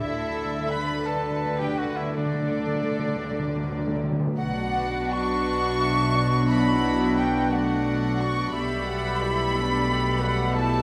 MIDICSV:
0, 0, Header, 1, 11, 480
1, 0, Start_track
1, 0, Tempo, 705053
1, 3, Time_signature, 6, 3, 24, 8
1, 964, Tempo, 738916
1, 3364, Tempo, 682594
1, 7379, End_track
2, 0, Start_track
2, 0, Title_t, "Flute"
2, 0, Program_c, 0, 73
2, 0, Note_on_c, 0, 76, 84
2, 480, Note_on_c, 0, 83, 82
2, 491, Note_off_c, 0, 76, 0
2, 716, Note_off_c, 0, 83, 0
2, 720, Note_on_c, 0, 81, 67
2, 1072, Note_on_c, 0, 79, 66
2, 1081, Note_off_c, 0, 81, 0
2, 1200, Note_on_c, 0, 78, 73
2, 1210, Note_off_c, 0, 79, 0
2, 1319, Note_on_c, 0, 76, 66
2, 1329, Note_off_c, 0, 78, 0
2, 1443, Note_off_c, 0, 76, 0
2, 1450, Note_on_c, 0, 74, 78
2, 2622, Note_off_c, 0, 74, 0
2, 2888, Note_on_c, 0, 78, 97
2, 3372, Note_on_c, 0, 85, 102
2, 3383, Note_off_c, 0, 78, 0
2, 4325, Note_off_c, 0, 85, 0
2, 4329, Note_on_c, 0, 83, 93
2, 4804, Note_off_c, 0, 83, 0
2, 4817, Note_on_c, 0, 79, 82
2, 5059, Note_on_c, 0, 78, 72
2, 5070, Note_off_c, 0, 79, 0
2, 5536, Note_on_c, 0, 85, 84
2, 5546, Note_off_c, 0, 78, 0
2, 5769, Note_off_c, 0, 85, 0
2, 5773, Note_on_c, 0, 83, 109
2, 7177, Note_off_c, 0, 83, 0
2, 7206, Note_on_c, 0, 81, 105
2, 7379, Note_off_c, 0, 81, 0
2, 7379, End_track
3, 0, Start_track
3, 0, Title_t, "Violin section"
3, 0, Program_c, 1, 48
3, 1, Note_on_c, 1, 76, 100
3, 450, Note_off_c, 1, 76, 0
3, 470, Note_on_c, 1, 83, 102
3, 715, Note_off_c, 1, 83, 0
3, 718, Note_on_c, 1, 81, 86
3, 1081, Note_off_c, 1, 81, 0
3, 1089, Note_on_c, 1, 79, 84
3, 1201, Note_on_c, 1, 78, 81
3, 1205, Note_off_c, 1, 79, 0
3, 1322, Note_off_c, 1, 78, 0
3, 1327, Note_on_c, 1, 76, 74
3, 1444, Note_on_c, 1, 74, 86
3, 1447, Note_off_c, 1, 76, 0
3, 2620, Note_off_c, 1, 74, 0
3, 2893, Note_on_c, 1, 78, 102
3, 3342, Note_off_c, 1, 78, 0
3, 3370, Note_on_c, 1, 85, 117
3, 4316, Note_off_c, 1, 85, 0
3, 4332, Note_on_c, 1, 83, 110
3, 4805, Note_off_c, 1, 83, 0
3, 4813, Note_on_c, 1, 79, 92
3, 5050, Note_off_c, 1, 79, 0
3, 5055, Note_on_c, 1, 78, 85
3, 5527, Note_on_c, 1, 85, 101
3, 5534, Note_off_c, 1, 78, 0
3, 5759, Note_on_c, 1, 83, 117
3, 5771, Note_off_c, 1, 85, 0
3, 7170, Note_off_c, 1, 83, 0
3, 7204, Note_on_c, 1, 81, 125
3, 7379, Note_off_c, 1, 81, 0
3, 7379, End_track
4, 0, Start_track
4, 0, Title_t, "Violin section"
4, 0, Program_c, 2, 48
4, 0, Note_on_c, 2, 64, 76
4, 445, Note_off_c, 2, 64, 0
4, 475, Note_on_c, 2, 71, 75
4, 717, Note_off_c, 2, 71, 0
4, 720, Note_on_c, 2, 69, 68
4, 1082, Note_off_c, 2, 69, 0
4, 1082, Note_on_c, 2, 67, 73
4, 1198, Note_on_c, 2, 66, 72
4, 1202, Note_off_c, 2, 67, 0
4, 1320, Note_off_c, 2, 66, 0
4, 1328, Note_on_c, 2, 64, 66
4, 1444, Note_on_c, 2, 62, 71
4, 1447, Note_off_c, 2, 64, 0
4, 2619, Note_off_c, 2, 62, 0
4, 2889, Note_on_c, 2, 71, 76
4, 2889, Note_on_c, 2, 74, 71
4, 3583, Note_off_c, 2, 74, 0
4, 3615, Note_on_c, 2, 78, 76
4, 3847, Note_on_c, 2, 76, 74
4, 3853, Note_off_c, 2, 78, 0
4, 4089, Note_off_c, 2, 76, 0
4, 4098, Note_on_c, 2, 74, 73
4, 4306, Note_off_c, 2, 71, 0
4, 4329, Note_off_c, 2, 74, 0
4, 4338, Note_on_c, 2, 74, 67
4, 4339, Note_on_c, 2, 78, 71
4, 5044, Note_off_c, 2, 74, 0
4, 5053, Note_off_c, 2, 78, 0
4, 5061, Note_on_c, 2, 78, 72
4, 5062, Note_on_c, 2, 74, 71
4, 5763, Note_off_c, 2, 74, 0
4, 5763, Note_off_c, 2, 78, 0
4, 5777, Note_on_c, 2, 74, 71
4, 5781, Note_on_c, 2, 76, 70
4, 6479, Note_off_c, 2, 74, 0
4, 6482, Note_off_c, 2, 76, 0
4, 6497, Note_on_c, 2, 71, 79
4, 6499, Note_on_c, 2, 74, 77
4, 7202, Note_off_c, 2, 74, 0
4, 7210, Note_on_c, 2, 74, 74
4, 7379, Note_off_c, 2, 71, 0
4, 7379, Note_off_c, 2, 74, 0
4, 7379, End_track
5, 0, Start_track
5, 0, Title_t, "Oboe"
5, 0, Program_c, 3, 68
5, 9, Note_on_c, 3, 64, 84
5, 454, Note_off_c, 3, 64, 0
5, 481, Note_on_c, 3, 71, 81
5, 723, Note_on_c, 3, 69, 69
5, 734, Note_off_c, 3, 71, 0
5, 1078, Note_on_c, 3, 67, 66
5, 1088, Note_off_c, 3, 69, 0
5, 1203, Note_on_c, 3, 66, 71
5, 1212, Note_off_c, 3, 67, 0
5, 1322, Note_on_c, 3, 64, 70
5, 1332, Note_off_c, 3, 66, 0
5, 1444, Note_off_c, 3, 64, 0
5, 1453, Note_on_c, 3, 62, 65
5, 2624, Note_off_c, 3, 62, 0
5, 2888, Note_on_c, 3, 66, 76
5, 5748, Note_off_c, 3, 66, 0
5, 5771, Note_on_c, 3, 69, 77
5, 7379, Note_off_c, 3, 69, 0
5, 7379, End_track
6, 0, Start_track
6, 0, Title_t, "Clarinet"
6, 0, Program_c, 4, 71
6, 2884, Note_on_c, 4, 62, 86
6, 5745, Note_off_c, 4, 62, 0
6, 5777, Note_on_c, 4, 67, 85
6, 7379, Note_off_c, 4, 67, 0
6, 7379, End_track
7, 0, Start_track
7, 0, Title_t, "Viola section"
7, 0, Program_c, 5, 48
7, 0, Note_on_c, 5, 69, 81
7, 717, Note_off_c, 5, 69, 0
7, 717, Note_on_c, 5, 71, 82
7, 1443, Note_off_c, 5, 71, 0
7, 1445, Note_on_c, 5, 69, 76
7, 2523, Note_off_c, 5, 69, 0
7, 2886, Note_on_c, 5, 66, 83
7, 2887, Note_on_c, 5, 62, 83
7, 4304, Note_off_c, 5, 66, 0
7, 4305, Note_off_c, 5, 62, 0
7, 4335, Note_on_c, 5, 64, 79
7, 4337, Note_on_c, 5, 59, 80
7, 5043, Note_off_c, 5, 59, 0
7, 5057, Note_off_c, 5, 64, 0
7, 5057, Note_on_c, 5, 57, 74
7, 5058, Note_on_c, 5, 62, 78
7, 5762, Note_off_c, 5, 62, 0
7, 5773, Note_on_c, 5, 67, 82
7, 5775, Note_off_c, 5, 57, 0
7, 5776, Note_on_c, 5, 55, 82
7, 6013, Note_off_c, 5, 67, 0
7, 6017, Note_on_c, 5, 78, 78
7, 6250, Note_off_c, 5, 78, 0
7, 6255, Note_on_c, 5, 64, 76
7, 6479, Note_off_c, 5, 55, 0
7, 6493, Note_off_c, 5, 64, 0
7, 6497, Note_on_c, 5, 55, 81
7, 6497, Note_on_c, 5, 62, 86
7, 6733, Note_off_c, 5, 62, 0
7, 6734, Note_on_c, 5, 67, 78
7, 6965, Note_off_c, 5, 67, 0
7, 6966, Note_on_c, 5, 78, 89
7, 7204, Note_off_c, 5, 78, 0
7, 7204, Note_on_c, 5, 64, 85
7, 7379, Note_off_c, 5, 55, 0
7, 7379, Note_off_c, 5, 64, 0
7, 7379, End_track
8, 0, Start_track
8, 0, Title_t, "French horn section"
8, 0, Program_c, 6, 60
8, 2888, Note_on_c, 6, 54, 83
8, 2890, Note_on_c, 6, 62, 85
8, 5748, Note_off_c, 6, 54, 0
8, 5749, Note_off_c, 6, 62, 0
8, 5773, Note_on_c, 6, 67, 85
8, 5774, Note_on_c, 6, 57, 82
8, 7379, Note_off_c, 6, 57, 0
8, 7379, Note_off_c, 6, 67, 0
8, 7379, End_track
9, 0, Start_track
9, 0, Title_t, "Timpani"
9, 0, Program_c, 7, 47
9, 53, Note_on_c, 7, 50, 39
9, 90, Note_off_c, 7, 50, 0
9, 98, Note_on_c, 7, 50, 37
9, 141, Note_off_c, 7, 50, 0
9, 149, Note_on_c, 7, 50, 36
9, 199, Note_off_c, 7, 50, 0
9, 254, Note_on_c, 7, 50, 40
9, 299, Note_off_c, 7, 50, 0
9, 307, Note_on_c, 7, 50, 41
9, 345, Note_off_c, 7, 50, 0
9, 353, Note_on_c, 7, 50, 39
9, 400, Note_off_c, 7, 50, 0
9, 408, Note_on_c, 7, 50, 39
9, 454, Note_off_c, 7, 50, 0
9, 462, Note_on_c, 7, 50, 38
9, 508, Note_off_c, 7, 50, 0
9, 516, Note_on_c, 7, 50, 44
9, 562, Note_off_c, 7, 50, 0
9, 570, Note_on_c, 7, 50, 44
9, 610, Note_off_c, 7, 50, 0
9, 619, Note_on_c, 7, 50, 46
9, 670, Note_off_c, 7, 50, 0
9, 678, Note_on_c, 7, 50, 48
9, 723, Note_off_c, 7, 50, 0
9, 781, Note_on_c, 7, 50, 45
9, 828, Note_off_c, 7, 50, 0
9, 836, Note_on_c, 7, 50, 46
9, 880, Note_off_c, 7, 50, 0
9, 888, Note_on_c, 7, 50, 53
9, 925, Note_off_c, 7, 50, 0
9, 933, Note_on_c, 7, 50, 54
9, 977, Note_off_c, 7, 50, 0
9, 985, Note_on_c, 7, 50, 50
9, 1027, Note_off_c, 7, 50, 0
9, 1035, Note_on_c, 7, 50, 53
9, 1080, Note_off_c, 7, 50, 0
9, 1088, Note_on_c, 7, 50, 53
9, 1127, Note_off_c, 7, 50, 0
9, 1135, Note_on_c, 7, 50, 55
9, 1184, Note_off_c, 7, 50, 0
9, 1192, Note_on_c, 7, 50, 53
9, 1237, Note_off_c, 7, 50, 0
9, 1245, Note_on_c, 7, 50, 55
9, 1287, Note_off_c, 7, 50, 0
9, 1295, Note_on_c, 7, 50, 58
9, 1343, Note_off_c, 7, 50, 0
9, 1351, Note_on_c, 7, 50, 53
9, 1398, Note_off_c, 7, 50, 0
9, 1406, Note_on_c, 7, 50, 58
9, 1449, Note_off_c, 7, 50, 0
9, 1457, Note_on_c, 7, 50, 59
9, 1503, Note_off_c, 7, 50, 0
9, 1511, Note_on_c, 7, 50, 59
9, 1554, Note_off_c, 7, 50, 0
9, 1562, Note_on_c, 7, 50, 63
9, 1607, Note_off_c, 7, 50, 0
9, 1615, Note_on_c, 7, 50, 64
9, 1663, Note_off_c, 7, 50, 0
9, 1671, Note_on_c, 7, 50, 64
9, 1716, Note_off_c, 7, 50, 0
9, 1723, Note_on_c, 7, 50, 67
9, 1771, Note_off_c, 7, 50, 0
9, 1778, Note_on_c, 7, 50, 71
9, 1823, Note_off_c, 7, 50, 0
9, 1831, Note_on_c, 7, 50, 61
9, 1874, Note_off_c, 7, 50, 0
9, 1882, Note_on_c, 7, 50, 68
9, 1927, Note_off_c, 7, 50, 0
9, 1935, Note_on_c, 7, 50, 74
9, 1979, Note_off_c, 7, 50, 0
9, 1987, Note_on_c, 7, 50, 75
9, 2036, Note_off_c, 7, 50, 0
9, 2044, Note_on_c, 7, 50, 72
9, 2087, Note_off_c, 7, 50, 0
9, 2095, Note_on_c, 7, 50, 75
9, 2137, Note_off_c, 7, 50, 0
9, 2145, Note_on_c, 7, 50, 82
9, 2188, Note_off_c, 7, 50, 0
9, 2196, Note_on_c, 7, 50, 77
9, 2242, Note_off_c, 7, 50, 0
9, 2250, Note_on_c, 7, 50, 87
9, 2295, Note_off_c, 7, 50, 0
9, 2303, Note_on_c, 7, 50, 88
9, 2348, Note_off_c, 7, 50, 0
9, 2355, Note_on_c, 7, 50, 89
9, 2396, Note_off_c, 7, 50, 0
9, 2404, Note_on_c, 7, 50, 91
9, 2450, Note_off_c, 7, 50, 0
9, 2458, Note_on_c, 7, 50, 90
9, 2502, Note_off_c, 7, 50, 0
9, 2510, Note_on_c, 7, 50, 92
9, 2553, Note_off_c, 7, 50, 0
9, 2561, Note_on_c, 7, 50, 97
9, 2607, Note_off_c, 7, 50, 0
9, 2615, Note_on_c, 7, 50, 100
9, 2659, Note_off_c, 7, 50, 0
9, 2667, Note_on_c, 7, 50, 104
9, 2710, Note_off_c, 7, 50, 0
9, 2718, Note_on_c, 7, 50, 96
9, 2763, Note_off_c, 7, 50, 0
9, 2771, Note_on_c, 7, 50, 96
9, 2812, Note_off_c, 7, 50, 0
9, 2820, Note_on_c, 7, 50, 99
9, 2871, Note_off_c, 7, 50, 0
9, 7379, End_track
10, 0, Start_track
10, 0, Title_t, "Cello section"
10, 0, Program_c, 8, 48
10, 2, Note_on_c, 8, 50, 78
10, 2719, Note_off_c, 8, 50, 0
10, 2886, Note_on_c, 8, 47, 87
10, 5746, Note_off_c, 8, 47, 0
10, 5778, Note_on_c, 8, 47, 82
10, 7379, Note_off_c, 8, 47, 0
10, 7379, End_track
11, 0, Start_track
11, 0, Title_t, "Double bass section"
11, 0, Program_c, 10, 48
11, 2, Note_on_c, 10, 38, 74
11, 2719, Note_off_c, 10, 38, 0
11, 2888, Note_on_c, 10, 35, 78
11, 5747, Note_off_c, 10, 35, 0
11, 5774, Note_on_c, 10, 35, 81
11, 7379, Note_off_c, 10, 35, 0
11, 7379, End_track
0, 0, End_of_file